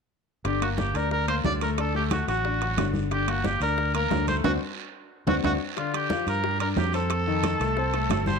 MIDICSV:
0, 0, Header, 1, 5, 480
1, 0, Start_track
1, 0, Key_signature, -2, "minor"
1, 0, Tempo, 332410
1, 654, Time_signature, 4, 2, 24, 8
1, 12119, End_track
2, 0, Start_track
2, 0, Title_t, "Trumpet"
2, 0, Program_c, 0, 56
2, 658, Note_on_c, 0, 67, 73
2, 880, Note_off_c, 0, 67, 0
2, 902, Note_on_c, 0, 66, 75
2, 1008, Note_off_c, 0, 66, 0
2, 1130, Note_on_c, 0, 67, 75
2, 1376, Note_on_c, 0, 70, 80
2, 1398, Note_off_c, 0, 67, 0
2, 1611, Note_off_c, 0, 70, 0
2, 1620, Note_on_c, 0, 70, 89
2, 1841, Note_off_c, 0, 70, 0
2, 1852, Note_on_c, 0, 72, 83
2, 1960, Note_off_c, 0, 72, 0
2, 2097, Note_on_c, 0, 74, 85
2, 2204, Note_off_c, 0, 74, 0
2, 2347, Note_on_c, 0, 70, 75
2, 2452, Note_off_c, 0, 70, 0
2, 2590, Note_on_c, 0, 69, 87
2, 2806, Note_off_c, 0, 69, 0
2, 2834, Note_on_c, 0, 67, 74
2, 2938, Note_off_c, 0, 67, 0
2, 3065, Note_on_c, 0, 66, 78
2, 3284, Note_off_c, 0, 66, 0
2, 3303, Note_on_c, 0, 66, 80
2, 4202, Note_off_c, 0, 66, 0
2, 4512, Note_on_c, 0, 67, 81
2, 4759, Note_on_c, 0, 66, 74
2, 4781, Note_off_c, 0, 67, 0
2, 4992, Note_on_c, 0, 67, 77
2, 5014, Note_off_c, 0, 66, 0
2, 5224, Note_off_c, 0, 67, 0
2, 5231, Note_on_c, 0, 70, 82
2, 5671, Note_off_c, 0, 70, 0
2, 5712, Note_on_c, 0, 70, 83
2, 6152, Note_off_c, 0, 70, 0
2, 6187, Note_on_c, 0, 72, 75
2, 6293, Note_off_c, 0, 72, 0
2, 6416, Note_on_c, 0, 66, 80
2, 6532, Note_off_c, 0, 66, 0
2, 7626, Note_on_c, 0, 66, 88
2, 7739, Note_off_c, 0, 66, 0
2, 7864, Note_on_c, 0, 66, 85
2, 7978, Note_off_c, 0, 66, 0
2, 8347, Note_on_c, 0, 65, 72
2, 8566, Note_off_c, 0, 65, 0
2, 8589, Note_on_c, 0, 67, 78
2, 9030, Note_off_c, 0, 67, 0
2, 9074, Note_on_c, 0, 70, 80
2, 9513, Note_off_c, 0, 70, 0
2, 9549, Note_on_c, 0, 70, 76
2, 9654, Note_off_c, 0, 70, 0
2, 9792, Note_on_c, 0, 67, 71
2, 10008, Note_off_c, 0, 67, 0
2, 10028, Note_on_c, 0, 69, 83
2, 11885, Note_off_c, 0, 69, 0
2, 11945, Note_on_c, 0, 72, 81
2, 12119, Note_off_c, 0, 72, 0
2, 12119, End_track
3, 0, Start_track
3, 0, Title_t, "Grand piano"
3, 0, Program_c, 1, 0
3, 652, Note_on_c, 1, 50, 66
3, 659, Note_on_c, 1, 62, 70
3, 850, Note_off_c, 1, 50, 0
3, 854, Note_off_c, 1, 62, 0
3, 890, Note_on_c, 1, 58, 60
3, 893, Note_on_c, 1, 70, 61
3, 1285, Note_off_c, 1, 58, 0
3, 1287, Note_off_c, 1, 70, 0
3, 1379, Note_on_c, 1, 62, 62
3, 1381, Note_on_c, 1, 74, 64
3, 1771, Note_off_c, 1, 62, 0
3, 1772, Note_off_c, 1, 74, 0
3, 1848, Note_on_c, 1, 58, 65
3, 1855, Note_on_c, 1, 70, 65
3, 2048, Note_off_c, 1, 58, 0
3, 2052, Note_off_c, 1, 70, 0
3, 2092, Note_on_c, 1, 50, 63
3, 2096, Note_on_c, 1, 62, 65
3, 2290, Note_off_c, 1, 50, 0
3, 2292, Note_off_c, 1, 62, 0
3, 2337, Note_on_c, 1, 57, 63
3, 2340, Note_on_c, 1, 69, 61
3, 2533, Note_off_c, 1, 57, 0
3, 2535, Note_off_c, 1, 69, 0
3, 2575, Note_on_c, 1, 62, 62
3, 2576, Note_on_c, 1, 74, 60
3, 2772, Note_off_c, 1, 62, 0
3, 2772, Note_off_c, 1, 74, 0
3, 2811, Note_on_c, 1, 57, 62
3, 2816, Note_on_c, 1, 69, 60
3, 3207, Note_off_c, 1, 57, 0
3, 3209, Note_off_c, 1, 69, 0
3, 3291, Note_on_c, 1, 54, 65
3, 3291, Note_on_c, 1, 66, 66
3, 3490, Note_off_c, 1, 54, 0
3, 3490, Note_off_c, 1, 66, 0
3, 3529, Note_on_c, 1, 62, 63
3, 3532, Note_on_c, 1, 74, 60
3, 3728, Note_off_c, 1, 62, 0
3, 3730, Note_off_c, 1, 74, 0
3, 3772, Note_on_c, 1, 54, 66
3, 3778, Note_on_c, 1, 66, 64
3, 3970, Note_off_c, 1, 54, 0
3, 3974, Note_off_c, 1, 66, 0
3, 4011, Note_on_c, 1, 50, 66
3, 4017, Note_on_c, 1, 62, 64
3, 4407, Note_off_c, 1, 50, 0
3, 4410, Note_off_c, 1, 62, 0
3, 4496, Note_on_c, 1, 50, 68
3, 4497, Note_on_c, 1, 62, 69
3, 4693, Note_off_c, 1, 50, 0
3, 4694, Note_off_c, 1, 62, 0
3, 4730, Note_on_c, 1, 58, 64
3, 4733, Note_on_c, 1, 70, 65
3, 5126, Note_off_c, 1, 58, 0
3, 5128, Note_off_c, 1, 70, 0
3, 5220, Note_on_c, 1, 62, 65
3, 5223, Note_on_c, 1, 74, 62
3, 5612, Note_off_c, 1, 62, 0
3, 5614, Note_off_c, 1, 74, 0
3, 5704, Note_on_c, 1, 58, 62
3, 5705, Note_on_c, 1, 70, 64
3, 5898, Note_off_c, 1, 58, 0
3, 5898, Note_off_c, 1, 70, 0
3, 5946, Note_on_c, 1, 50, 62
3, 5952, Note_on_c, 1, 62, 67
3, 6139, Note_off_c, 1, 50, 0
3, 6143, Note_off_c, 1, 62, 0
3, 6180, Note_on_c, 1, 57, 61
3, 6187, Note_on_c, 1, 69, 64
3, 6376, Note_off_c, 1, 57, 0
3, 6380, Note_off_c, 1, 69, 0
3, 6418, Note_on_c, 1, 62, 81
3, 6421, Note_on_c, 1, 60, 84
3, 6422, Note_on_c, 1, 66, 83
3, 6571, Note_off_c, 1, 62, 0
3, 6573, Note_off_c, 1, 60, 0
3, 6574, Note_off_c, 1, 66, 0
3, 7609, Note_on_c, 1, 62, 83
3, 7611, Note_on_c, 1, 60, 86
3, 7611, Note_on_c, 1, 66, 84
3, 7766, Note_off_c, 1, 62, 0
3, 7767, Note_off_c, 1, 60, 0
3, 7767, Note_off_c, 1, 66, 0
3, 7847, Note_on_c, 1, 66, 82
3, 7851, Note_on_c, 1, 60, 79
3, 7851, Note_on_c, 1, 62, 83
3, 8005, Note_off_c, 1, 66, 0
3, 8007, Note_off_c, 1, 60, 0
3, 8007, Note_off_c, 1, 62, 0
3, 8339, Note_on_c, 1, 50, 75
3, 8343, Note_on_c, 1, 62, 69
3, 8732, Note_off_c, 1, 50, 0
3, 8734, Note_off_c, 1, 62, 0
3, 8813, Note_on_c, 1, 53, 65
3, 8823, Note_on_c, 1, 65, 66
3, 9208, Note_off_c, 1, 53, 0
3, 9214, Note_off_c, 1, 65, 0
3, 9298, Note_on_c, 1, 55, 68
3, 9303, Note_on_c, 1, 67, 67
3, 9495, Note_off_c, 1, 55, 0
3, 9498, Note_off_c, 1, 67, 0
3, 9530, Note_on_c, 1, 62, 70
3, 9534, Note_on_c, 1, 74, 71
3, 9927, Note_off_c, 1, 62, 0
3, 9929, Note_off_c, 1, 74, 0
3, 10021, Note_on_c, 1, 60, 66
3, 10023, Note_on_c, 1, 72, 69
3, 10413, Note_off_c, 1, 60, 0
3, 10414, Note_off_c, 1, 72, 0
3, 10502, Note_on_c, 1, 51, 75
3, 10505, Note_on_c, 1, 63, 77
3, 10893, Note_off_c, 1, 51, 0
3, 10895, Note_off_c, 1, 63, 0
3, 10985, Note_on_c, 1, 57, 74
3, 10988, Note_on_c, 1, 69, 70
3, 11178, Note_off_c, 1, 57, 0
3, 11180, Note_off_c, 1, 69, 0
3, 11225, Note_on_c, 1, 60, 64
3, 11229, Note_on_c, 1, 72, 66
3, 11418, Note_off_c, 1, 60, 0
3, 11421, Note_off_c, 1, 72, 0
3, 11462, Note_on_c, 1, 57, 67
3, 11465, Note_on_c, 1, 69, 66
3, 11853, Note_off_c, 1, 57, 0
3, 11856, Note_off_c, 1, 69, 0
3, 11944, Note_on_c, 1, 55, 67
3, 11949, Note_on_c, 1, 67, 69
3, 12119, Note_off_c, 1, 55, 0
3, 12119, Note_off_c, 1, 67, 0
3, 12119, End_track
4, 0, Start_track
4, 0, Title_t, "Fingered electric bass"
4, 0, Program_c, 2, 33
4, 643, Note_on_c, 2, 31, 81
4, 1318, Note_off_c, 2, 31, 0
4, 1360, Note_on_c, 2, 38, 78
4, 2036, Note_off_c, 2, 38, 0
4, 2079, Note_on_c, 2, 38, 84
4, 3206, Note_off_c, 2, 38, 0
4, 3285, Note_on_c, 2, 33, 81
4, 3960, Note_off_c, 2, 33, 0
4, 3996, Note_on_c, 2, 31, 80
4, 5125, Note_off_c, 2, 31, 0
4, 5202, Note_on_c, 2, 38, 78
4, 5879, Note_off_c, 2, 38, 0
4, 5931, Note_on_c, 2, 38, 84
4, 6380, Note_off_c, 2, 38, 0
4, 6414, Note_on_c, 2, 38, 83
4, 6594, Note_off_c, 2, 38, 0
4, 7604, Note_on_c, 2, 38, 81
4, 7789, Note_off_c, 2, 38, 0
4, 7851, Note_on_c, 2, 38, 85
4, 8033, Note_off_c, 2, 38, 0
4, 9047, Note_on_c, 2, 43, 86
4, 9721, Note_off_c, 2, 43, 0
4, 9766, Note_on_c, 2, 41, 89
4, 10890, Note_off_c, 2, 41, 0
4, 10973, Note_on_c, 2, 36, 83
4, 11644, Note_off_c, 2, 36, 0
4, 11681, Note_on_c, 2, 31, 92
4, 12119, Note_off_c, 2, 31, 0
4, 12119, End_track
5, 0, Start_track
5, 0, Title_t, "Drums"
5, 648, Note_on_c, 9, 60, 59
5, 651, Note_on_c, 9, 74, 61
5, 652, Note_on_c, 9, 65, 59
5, 653, Note_on_c, 9, 63, 29
5, 792, Note_off_c, 9, 60, 0
5, 796, Note_off_c, 9, 65, 0
5, 796, Note_off_c, 9, 74, 0
5, 798, Note_off_c, 9, 63, 0
5, 890, Note_on_c, 9, 60, 27
5, 894, Note_on_c, 9, 63, 29
5, 897, Note_on_c, 9, 65, 79
5, 1034, Note_off_c, 9, 60, 0
5, 1039, Note_off_c, 9, 63, 0
5, 1042, Note_off_c, 9, 65, 0
5, 1124, Note_on_c, 9, 63, 86
5, 1126, Note_on_c, 9, 60, 51
5, 1128, Note_on_c, 9, 73, 62
5, 1141, Note_on_c, 9, 66, 52
5, 1268, Note_off_c, 9, 63, 0
5, 1270, Note_off_c, 9, 60, 0
5, 1272, Note_off_c, 9, 73, 0
5, 1286, Note_off_c, 9, 66, 0
5, 1364, Note_on_c, 9, 63, 29
5, 1367, Note_on_c, 9, 73, 57
5, 1372, Note_on_c, 9, 65, 56
5, 1509, Note_off_c, 9, 63, 0
5, 1511, Note_off_c, 9, 73, 0
5, 1516, Note_off_c, 9, 65, 0
5, 1604, Note_on_c, 9, 63, 31
5, 1607, Note_on_c, 9, 60, 58
5, 1607, Note_on_c, 9, 74, 61
5, 1748, Note_off_c, 9, 63, 0
5, 1752, Note_off_c, 9, 60, 0
5, 1752, Note_off_c, 9, 74, 0
5, 1839, Note_on_c, 9, 63, 32
5, 1853, Note_on_c, 9, 65, 77
5, 1855, Note_on_c, 9, 60, 30
5, 1983, Note_off_c, 9, 63, 0
5, 1998, Note_off_c, 9, 65, 0
5, 1999, Note_off_c, 9, 60, 0
5, 2085, Note_on_c, 9, 63, 70
5, 2087, Note_on_c, 9, 66, 76
5, 2087, Note_on_c, 9, 73, 62
5, 2089, Note_on_c, 9, 60, 31
5, 2089, Note_on_c, 9, 61, 69
5, 2230, Note_off_c, 9, 63, 0
5, 2231, Note_off_c, 9, 73, 0
5, 2232, Note_off_c, 9, 66, 0
5, 2233, Note_off_c, 9, 60, 0
5, 2233, Note_off_c, 9, 61, 0
5, 2328, Note_on_c, 9, 60, 30
5, 2329, Note_on_c, 9, 73, 66
5, 2331, Note_on_c, 9, 65, 66
5, 2473, Note_off_c, 9, 60, 0
5, 2473, Note_off_c, 9, 73, 0
5, 2475, Note_off_c, 9, 65, 0
5, 2566, Note_on_c, 9, 63, 31
5, 2566, Note_on_c, 9, 74, 61
5, 2569, Note_on_c, 9, 60, 60
5, 2572, Note_on_c, 9, 65, 78
5, 2710, Note_off_c, 9, 74, 0
5, 2711, Note_off_c, 9, 63, 0
5, 2714, Note_off_c, 9, 60, 0
5, 2716, Note_off_c, 9, 65, 0
5, 2808, Note_on_c, 9, 63, 28
5, 2811, Note_on_c, 9, 60, 28
5, 2952, Note_off_c, 9, 63, 0
5, 2956, Note_off_c, 9, 60, 0
5, 3039, Note_on_c, 9, 73, 64
5, 3048, Note_on_c, 9, 63, 86
5, 3048, Note_on_c, 9, 65, 84
5, 3048, Note_on_c, 9, 66, 54
5, 3054, Note_on_c, 9, 60, 49
5, 3183, Note_off_c, 9, 73, 0
5, 3192, Note_off_c, 9, 65, 0
5, 3192, Note_off_c, 9, 66, 0
5, 3193, Note_off_c, 9, 63, 0
5, 3198, Note_off_c, 9, 60, 0
5, 3292, Note_on_c, 9, 63, 30
5, 3294, Note_on_c, 9, 73, 58
5, 3300, Note_on_c, 9, 65, 59
5, 3436, Note_off_c, 9, 63, 0
5, 3438, Note_off_c, 9, 73, 0
5, 3444, Note_off_c, 9, 65, 0
5, 3528, Note_on_c, 9, 63, 31
5, 3530, Note_on_c, 9, 74, 60
5, 3535, Note_on_c, 9, 60, 62
5, 3672, Note_off_c, 9, 63, 0
5, 3674, Note_off_c, 9, 74, 0
5, 3679, Note_off_c, 9, 60, 0
5, 3770, Note_on_c, 9, 63, 32
5, 3777, Note_on_c, 9, 60, 30
5, 3778, Note_on_c, 9, 65, 59
5, 3914, Note_off_c, 9, 63, 0
5, 3921, Note_off_c, 9, 60, 0
5, 3923, Note_off_c, 9, 65, 0
5, 4005, Note_on_c, 9, 63, 68
5, 4012, Note_on_c, 9, 73, 66
5, 4014, Note_on_c, 9, 65, 82
5, 4014, Note_on_c, 9, 66, 77
5, 4016, Note_on_c, 9, 60, 30
5, 4016, Note_on_c, 9, 61, 75
5, 4150, Note_off_c, 9, 63, 0
5, 4156, Note_off_c, 9, 73, 0
5, 4158, Note_off_c, 9, 65, 0
5, 4158, Note_off_c, 9, 66, 0
5, 4161, Note_off_c, 9, 60, 0
5, 4161, Note_off_c, 9, 61, 0
5, 4239, Note_on_c, 9, 63, 70
5, 4258, Note_on_c, 9, 73, 63
5, 4260, Note_on_c, 9, 60, 32
5, 4384, Note_off_c, 9, 63, 0
5, 4402, Note_off_c, 9, 73, 0
5, 4405, Note_off_c, 9, 60, 0
5, 4488, Note_on_c, 9, 63, 32
5, 4495, Note_on_c, 9, 60, 62
5, 4497, Note_on_c, 9, 74, 62
5, 4501, Note_on_c, 9, 65, 60
5, 4633, Note_off_c, 9, 63, 0
5, 4640, Note_off_c, 9, 60, 0
5, 4641, Note_off_c, 9, 74, 0
5, 4645, Note_off_c, 9, 65, 0
5, 4727, Note_on_c, 9, 63, 30
5, 4737, Note_on_c, 9, 60, 28
5, 4737, Note_on_c, 9, 65, 82
5, 4871, Note_off_c, 9, 63, 0
5, 4881, Note_off_c, 9, 60, 0
5, 4881, Note_off_c, 9, 65, 0
5, 4971, Note_on_c, 9, 63, 89
5, 4974, Note_on_c, 9, 73, 63
5, 4980, Note_on_c, 9, 60, 52
5, 4982, Note_on_c, 9, 66, 55
5, 5116, Note_off_c, 9, 63, 0
5, 5119, Note_off_c, 9, 73, 0
5, 5124, Note_off_c, 9, 60, 0
5, 5126, Note_off_c, 9, 66, 0
5, 5207, Note_on_c, 9, 63, 30
5, 5213, Note_on_c, 9, 73, 58
5, 5221, Note_on_c, 9, 65, 56
5, 5352, Note_off_c, 9, 63, 0
5, 5358, Note_off_c, 9, 73, 0
5, 5365, Note_off_c, 9, 65, 0
5, 5449, Note_on_c, 9, 63, 31
5, 5456, Note_on_c, 9, 74, 66
5, 5457, Note_on_c, 9, 60, 61
5, 5594, Note_off_c, 9, 63, 0
5, 5601, Note_off_c, 9, 60, 0
5, 5601, Note_off_c, 9, 74, 0
5, 5692, Note_on_c, 9, 63, 30
5, 5695, Note_on_c, 9, 60, 31
5, 5698, Note_on_c, 9, 65, 79
5, 5837, Note_off_c, 9, 63, 0
5, 5839, Note_off_c, 9, 60, 0
5, 5843, Note_off_c, 9, 65, 0
5, 5931, Note_on_c, 9, 63, 70
5, 5932, Note_on_c, 9, 73, 62
5, 5935, Note_on_c, 9, 60, 31
5, 5935, Note_on_c, 9, 61, 80
5, 5938, Note_on_c, 9, 66, 76
5, 6076, Note_off_c, 9, 63, 0
5, 6076, Note_off_c, 9, 73, 0
5, 6080, Note_off_c, 9, 60, 0
5, 6080, Note_off_c, 9, 61, 0
5, 6083, Note_off_c, 9, 66, 0
5, 6172, Note_on_c, 9, 73, 64
5, 6173, Note_on_c, 9, 63, 61
5, 6178, Note_on_c, 9, 60, 29
5, 6180, Note_on_c, 9, 65, 65
5, 6316, Note_off_c, 9, 73, 0
5, 6317, Note_off_c, 9, 63, 0
5, 6322, Note_off_c, 9, 60, 0
5, 6325, Note_off_c, 9, 65, 0
5, 6411, Note_on_c, 9, 74, 89
5, 6413, Note_on_c, 9, 61, 87
5, 6415, Note_on_c, 9, 63, 85
5, 6418, Note_on_c, 9, 65, 91
5, 6555, Note_off_c, 9, 74, 0
5, 6557, Note_off_c, 9, 61, 0
5, 6559, Note_off_c, 9, 63, 0
5, 6562, Note_off_c, 9, 65, 0
5, 7612, Note_on_c, 9, 61, 92
5, 7612, Note_on_c, 9, 74, 92
5, 7618, Note_on_c, 9, 65, 84
5, 7619, Note_on_c, 9, 63, 89
5, 7756, Note_off_c, 9, 61, 0
5, 7756, Note_off_c, 9, 74, 0
5, 7762, Note_off_c, 9, 65, 0
5, 7763, Note_off_c, 9, 63, 0
5, 7850, Note_on_c, 9, 61, 89
5, 7854, Note_on_c, 9, 74, 92
5, 7861, Note_on_c, 9, 65, 96
5, 7862, Note_on_c, 9, 63, 81
5, 7995, Note_off_c, 9, 61, 0
5, 7998, Note_off_c, 9, 74, 0
5, 8006, Note_off_c, 9, 63, 0
5, 8006, Note_off_c, 9, 65, 0
5, 8331, Note_on_c, 9, 60, 64
5, 8331, Note_on_c, 9, 63, 32
5, 8335, Note_on_c, 9, 74, 61
5, 8344, Note_on_c, 9, 65, 62
5, 8475, Note_off_c, 9, 63, 0
5, 8476, Note_off_c, 9, 60, 0
5, 8480, Note_off_c, 9, 74, 0
5, 8488, Note_off_c, 9, 65, 0
5, 8573, Note_on_c, 9, 60, 28
5, 8574, Note_on_c, 9, 63, 31
5, 8582, Note_on_c, 9, 65, 90
5, 8717, Note_off_c, 9, 60, 0
5, 8718, Note_off_c, 9, 63, 0
5, 8727, Note_off_c, 9, 65, 0
5, 8807, Note_on_c, 9, 63, 88
5, 8813, Note_on_c, 9, 60, 56
5, 8814, Note_on_c, 9, 73, 63
5, 8817, Note_on_c, 9, 66, 56
5, 8951, Note_off_c, 9, 63, 0
5, 8957, Note_off_c, 9, 60, 0
5, 8958, Note_off_c, 9, 73, 0
5, 8961, Note_off_c, 9, 66, 0
5, 9047, Note_on_c, 9, 63, 33
5, 9054, Note_on_c, 9, 73, 61
5, 9065, Note_on_c, 9, 65, 61
5, 9191, Note_off_c, 9, 63, 0
5, 9198, Note_off_c, 9, 73, 0
5, 9210, Note_off_c, 9, 65, 0
5, 9291, Note_on_c, 9, 63, 32
5, 9294, Note_on_c, 9, 74, 64
5, 9296, Note_on_c, 9, 60, 65
5, 9436, Note_off_c, 9, 63, 0
5, 9439, Note_off_c, 9, 74, 0
5, 9440, Note_off_c, 9, 60, 0
5, 9528, Note_on_c, 9, 63, 32
5, 9534, Note_on_c, 9, 60, 33
5, 9535, Note_on_c, 9, 65, 81
5, 9672, Note_off_c, 9, 63, 0
5, 9678, Note_off_c, 9, 60, 0
5, 9679, Note_off_c, 9, 65, 0
5, 9768, Note_on_c, 9, 63, 70
5, 9771, Note_on_c, 9, 60, 34
5, 9771, Note_on_c, 9, 61, 76
5, 9771, Note_on_c, 9, 66, 76
5, 9772, Note_on_c, 9, 73, 69
5, 9912, Note_off_c, 9, 63, 0
5, 9915, Note_off_c, 9, 60, 0
5, 9915, Note_off_c, 9, 61, 0
5, 9916, Note_off_c, 9, 66, 0
5, 9917, Note_off_c, 9, 73, 0
5, 10009, Note_on_c, 9, 73, 69
5, 10017, Note_on_c, 9, 60, 32
5, 10023, Note_on_c, 9, 65, 65
5, 10153, Note_off_c, 9, 73, 0
5, 10162, Note_off_c, 9, 60, 0
5, 10167, Note_off_c, 9, 65, 0
5, 10249, Note_on_c, 9, 74, 60
5, 10250, Note_on_c, 9, 60, 66
5, 10251, Note_on_c, 9, 63, 33
5, 10259, Note_on_c, 9, 65, 85
5, 10393, Note_off_c, 9, 74, 0
5, 10395, Note_off_c, 9, 60, 0
5, 10395, Note_off_c, 9, 63, 0
5, 10403, Note_off_c, 9, 65, 0
5, 10494, Note_on_c, 9, 63, 32
5, 10499, Note_on_c, 9, 60, 30
5, 10638, Note_off_c, 9, 63, 0
5, 10643, Note_off_c, 9, 60, 0
5, 10730, Note_on_c, 9, 73, 66
5, 10735, Note_on_c, 9, 63, 85
5, 10738, Note_on_c, 9, 65, 90
5, 10738, Note_on_c, 9, 66, 58
5, 10742, Note_on_c, 9, 60, 57
5, 10874, Note_off_c, 9, 73, 0
5, 10879, Note_off_c, 9, 63, 0
5, 10882, Note_off_c, 9, 65, 0
5, 10882, Note_off_c, 9, 66, 0
5, 10887, Note_off_c, 9, 60, 0
5, 10967, Note_on_c, 9, 63, 30
5, 10971, Note_on_c, 9, 73, 61
5, 10987, Note_on_c, 9, 65, 61
5, 11111, Note_off_c, 9, 63, 0
5, 11116, Note_off_c, 9, 73, 0
5, 11131, Note_off_c, 9, 65, 0
5, 11214, Note_on_c, 9, 63, 32
5, 11215, Note_on_c, 9, 74, 68
5, 11217, Note_on_c, 9, 60, 62
5, 11359, Note_off_c, 9, 63, 0
5, 11359, Note_off_c, 9, 74, 0
5, 11362, Note_off_c, 9, 60, 0
5, 11458, Note_on_c, 9, 63, 34
5, 11460, Note_on_c, 9, 65, 60
5, 11465, Note_on_c, 9, 60, 30
5, 11603, Note_off_c, 9, 63, 0
5, 11604, Note_off_c, 9, 65, 0
5, 11609, Note_off_c, 9, 60, 0
5, 11692, Note_on_c, 9, 63, 71
5, 11695, Note_on_c, 9, 60, 31
5, 11695, Note_on_c, 9, 61, 79
5, 11696, Note_on_c, 9, 73, 67
5, 11706, Note_on_c, 9, 65, 86
5, 11706, Note_on_c, 9, 66, 78
5, 11837, Note_off_c, 9, 63, 0
5, 11840, Note_off_c, 9, 60, 0
5, 11840, Note_off_c, 9, 61, 0
5, 11841, Note_off_c, 9, 73, 0
5, 11850, Note_off_c, 9, 65, 0
5, 11850, Note_off_c, 9, 66, 0
5, 11930, Note_on_c, 9, 63, 78
5, 11939, Note_on_c, 9, 73, 66
5, 11941, Note_on_c, 9, 60, 33
5, 12074, Note_off_c, 9, 63, 0
5, 12084, Note_off_c, 9, 73, 0
5, 12085, Note_off_c, 9, 60, 0
5, 12119, End_track
0, 0, End_of_file